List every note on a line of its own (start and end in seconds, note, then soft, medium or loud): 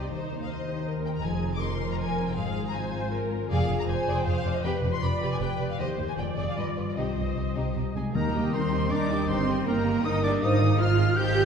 0.00 0.13 C3 soft
0.00 0.29 C4 soft
0.00 0.48 D#4 soft
0.00 1.20 D#4 soft
0.00 0.11 G4 soft
0.00 0.67 G4 soft
0.00 0.85 C5 soft
0.00 1.20 C5 soft
0.00 0.12 D5 soft
0.11 1.25 D#2 soft
0.11 1.26 D#3 soft
0.11 0.49 D#4 soft
0.11 0.40 C5 medium
0.30 1.42 C4 soft
0.42 0.50 F5 medium
0.49 1.04 D#4 soft
0.49 0.86 C5 soft
0.49 0.87 D#5 soft
0.68 1.26 G4 soft
0.86 1.25 A#4 soft
0.86 1.99 C5 soft
1.05 1.61 D#4 soft
1.05 1.10 G5 medium
1.16 1.25 A#5 medium
1.25 2.35 F1 soft
1.25 2.35 F2 soft
1.25 3.49 F3 soft
1.25 2.33 D#4 soft
1.25 1.62 G#4 soft
1.25 3.46 C5 soft
1.25 1.53 G#5 medium
1.43 2.74 C4 soft
1.55 1.63 D6 medium
1.62 2.17 D#4 soft
1.62 2.37 A#4 medium
1.62 1.91 C6 medium
1.81 3.12 G#4 soft
1.92 1.96 A#5 medium
2.00 3.52 C5 soft
2.00 2.27 G#5 medium
2.18 2.39 D#4 soft
2.28 2.38 G5 medium
2.37 3.50 G#1 medium
2.37 3.51 G#2 soft
2.37 3.50 G#2 medium
2.37 3.46 F4 medium
2.37 2.74 G#4 medium
2.37 2.65 F5 medium
2.56 4.64 G#3 soft
2.67 2.76 A#5 medium
2.75 3.31 C4 soft
2.75 3.12 C5 medium
2.75 3.13 G#5 medium
2.94 5.80 F4 soft
3.12 3.87 G#4 soft
3.12 3.50 A#4 medium
3.32 3.52 C4 soft
3.49 3.58 F1 medium
3.49 3.58 F2 medium
3.49 4.62 F3 soft
3.49 3.87 G#4 medium
3.49 3.67 G#4 medium
3.49 3.67 D5 medium
3.49 3.76 F5 medium
3.69 3.77 F1 soft
3.69 3.77 F2 soft
3.69 4.05 D4 soft
3.69 3.76 G#4 soft
3.69 3.77 D5 soft
3.79 3.83 A#5 medium
3.87 3.95 F1 soft
3.87 3.96 F2 soft
3.87 4.43 G#4 soft
3.87 3.96 G#4 soft
3.87 4.61 C5 medium
3.87 3.96 D5 soft
3.87 4.15 G#5 medium
4.06 4.15 F1 medium
4.06 4.14 F2 medium
4.06 4.81 D4 soft
4.06 4.24 G#4 medium
4.06 4.24 D5 medium
4.17 4.26 G5 medium
4.26 4.33 F1 soft
4.26 4.33 F2 soft
4.26 4.34 G#4 soft
4.26 4.34 D5 soft
4.26 4.53 F5 medium
4.44 4.52 F1 soft
4.44 4.52 F2 soft
4.44 4.64 G#4 soft
4.44 4.53 G#4 soft
4.44 4.53 D5 soft
4.55 4.64 D#5 medium
4.63 4.71 F1 medium
4.63 4.71 F2 medium
4.63 5.80 F3 soft
4.63 4.82 G4 medium
4.63 5.02 B4 medium
4.63 4.82 B4 medium
4.63 4.71 G5 medium
4.82 4.90 F1 soft
4.82 4.90 F2 soft
4.82 5.80 D4 soft
4.82 4.91 G4 soft
4.82 4.91 B4 soft
4.93 5.02 C6 medium
5.02 5.10 F1 soft
5.02 5.10 F2 soft
5.02 5.10 G4 soft
5.02 5.58 B4 soft
5.02 5.10 B4 soft
5.02 5.39 D5 medium
5.02 5.31 B5 medium
5.21 5.29 F1 medium
5.21 5.29 F2 medium
5.21 6.19 G4 soft
5.21 5.39 G4 medium
5.21 5.39 B4 medium
5.32 5.36 G#5 medium
5.40 5.48 F1 soft
5.40 5.48 F2 soft
5.40 5.48 G4 soft
5.40 5.79 B4 medium
5.40 5.49 B4 soft
5.40 5.80 D5 soft
5.40 5.59 G5 medium
5.59 5.67 F1 soft
5.59 5.67 F2 soft
5.59 5.67 G4 soft
5.59 5.80 B4 soft
5.59 5.67 B4 soft
5.59 5.69 D5 medium
5.70 5.79 F5 medium
5.78 5.86 D#2 medium
5.78 5.87 D#2 medium
5.78 6.19 D#3 soft
5.78 5.97 G4 medium
5.78 6.17 C5 medium
5.78 5.97 C5 medium
5.78 5.87 D#5 medium
5.98 6.06 D#2 soft
5.98 6.19 D#4 soft
5.98 6.06 G4 soft
5.98 6.06 C5 soft
5.98 6.19 C5 soft
6.09 6.12 G#5 medium
6.17 6.25 F1 soft
6.17 6.58 F2 soft
6.17 6.25 F2 soft
6.17 6.25 G#4 soft
6.17 6.96 D5 medium
6.17 6.26 D5 soft
6.17 6.26 G5 soft
6.36 6.44 F1 soft
6.36 6.44 F2 soft
6.36 6.97 D4 soft
6.36 6.55 G#4 soft
6.36 6.98 D5 soft
6.36 6.55 D5 soft
6.48 6.57 F5 soft
6.56 6.64 G1 soft
6.56 6.98 G2 soft
6.56 6.64 G2 soft
6.56 6.64 F4 soft
6.56 6.64 B4 soft
6.56 6.66 D#5 soft
6.75 6.84 G1 soft
6.75 6.84 G2 soft
6.75 6.84 F4 soft
6.75 6.98 F4 soft
6.75 6.83 B4 soft
6.75 6.98 B4 soft
6.88 6.97 D5 soft
6.95 7.04 C2 soft
6.95 8.16 C3 soft
6.95 7.04 C3 soft
6.95 7.15 D#4 soft
6.95 7.15 G4 soft
6.95 7.75 C5 soft
6.95 7.93 D#5 soft
7.15 7.24 C2 soft
7.15 7.24 C3 soft
7.15 8.33 G3 soft
7.15 7.25 D#4 soft
7.15 7.24 G4 soft
7.35 7.43 C2 soft
7.35 7.43 C3 soft
7.35 7.94 D#4 soft
7.35 7.44 D#4 soft
7.35 7.44 G4 soft
7.55 7.63 C2 soft
7.55 7.63 C3 soft
7.55 7.75 D#4 soft
7.55 7.74 G4 soft
7.55 8.16 C5 soft
7.75 7.83 C2 soft
7.75 7.83 C3 soft
7.75 7.84 D#4 soft
7.75 10.43 G4 soft
7.75 7.83 G4 soft
7.95 8.03 C2 soft
7.95 8.03 C3 soft
7.95 8.13 G#3 soft
7.95 9.09 D#4 soft
7.95 8.04 D#4 soft
7.95 8.04 G4 soft
7.95 8.17 G#4 soft
7.95 8.16 G#5 soft
7.95 8.04 G#5 soft
8.14 8.48 D#2 medium
8.14 9.31 D#3 soft
8.14 8.68 D#3 medium
8.14 8.53 A#3 medium
8.14 8.33 D#4 soft
8.14 8.29 G4 soft
8.14 8.33 A#4 soft
8.14 8.29 A#4 soft
8.14 8.53 A#4 medium
8.14 8.52 A#5 medium
8.14 8.33 A#5 soft
8.14 8.53 A#5 medium
8.34 9.46 G3 soft
8.34 8.53 G4 soft
8.34 8.53 D#5 soft
8.34 8.53 G5 soft
8.52 8.87 D#2 medium
8.52 8.91 C4 medium
8.52 8.72 D#4 soft
8.52 8.90 A#4 soft
8.52 8.72 A#4 soft
8.52 8.93 C5 medium
8.52 8.72 A#5 soft
8.52 8.90 C6 medium
8.52 8.93 C6 medium
8.72 8.91 G4 soft
8.72 8.91 D#5 soft
8.72 11.45 D#5 soft
8.72 8.91 G5 soft
8.90 9.25 D#2 medium
8.90 9.29 D4 medium
8.90 9.09 D#4 soft
8.90 9.09 A#4 soft
8.90 9.84 A#4 soft
8.90 9.28 D5 medium
8.90 9.09 A#5 soft
8.90 9.29 D6 medium
8.90 9.30 D6 medium
9.10 9.29 G4 soft
9.10 9.29 D#5 soft
9.10 9.29 G5 soft
9.28 9.62 G1 medium
9.28 10.44 G2 medium
9.28 9.66 C4 medium
9.28 9.46 D#4 soft
9.28 9.42 G4 medium
9.28 9.47 A#4 soft
9.28 9.66 C5 medium
9.28 9.42 D#5 medium
9.28 9.47 G5 soft
9.28 9.65 C6 medium
9.28 9.67 C6 medium
9.47 10.43 G3 soft
9.47 9.67 G4 soft
9.47 9.67 D#5 soft
9.65 10.00 G1 medium
9.65 10.05 A#3 medium
9.65 10.03 D#4 soft
9.65 9.86 D#4 soft
9.65 9.86 A#4 soft
9.65 10.04 A#4 medium
9.65 9.86 G5 soft
9.65 10.03 A#5 medium
9.65 10.06 A#5 medium
9.85 10.05 G4 soft
9.85 10.44 A#4 medium
9.85 10.05 D#5 soft
10.04 10.38 G1 medium
10.04 10.78 D#4 soft
10.04 10.24 D#4 medium
10.04 10.23 D#4 medium
10.04 10.23 A#4 medium
10.04 10.22 D#5 medium
10.04 10.22 G5 soft
10.04 10.23 D#6 medium
10.04 10.25 D#6 medium
10.22 10.43 A#3 soft
10.22 10.42 D4 medium
10.22 10.43 G4 soft
10.22 10.32 D5 medium
10.22 10.42 D#5 soft
10.22 10.30 D6 medium
10.22 10.42 D6 medium
10.41 10.75 G#1 medium
10.41 11.45 G#2 medium
10.41 10.60 D#4 medium
10.41 10.80 D#4 medium
10.41 10.56 F4 medium
10.41 10.60 C5 medium
10.41 10.56 C5 medium
10.41 10.82 D#5 medium
10.41 10.60 F5 medium
10.41 10.78 D#6 medium
10.41 10.82 D#6 medium
10.61 11.45 D#3 soft
10.61 10.80 F4 medium
10.61 10.80 G#4 medium
10.61 10.80 D#5 medium
10.79 11.12 G#1 medium
10.79 11.15 D#4 medium
10.79 10.99 D#4 medium
10.79 11.17 F4 medium
10.79 10.99 C5 medium
10.79 10.98 F5 medium
10.79 11.19 F5 medium
10.79 11.16 F6 medium
10.79 11.18 F6 medium
10.98 11.18 F4 medium
10.98 11.18 G#4 medium
10.98 11.45 C5 medium
10.98 11.17 D#5 medium
11.16 11.45 G#1 medium
11.16 11.45 D#4 soft
11.16 11.34 D#4 medium
11.16 11.45 G4 medium
11.16 11.35 C5 medium
11.16 11.34 F5 medium
11.16 11.45 G5 medium
11.16 11.45 G6 medium
11.35 11.45 C4 medium
11.35 11.45 F4 medium
11.35 11.45 G#4 medium
11.35 11.45 D#5 medium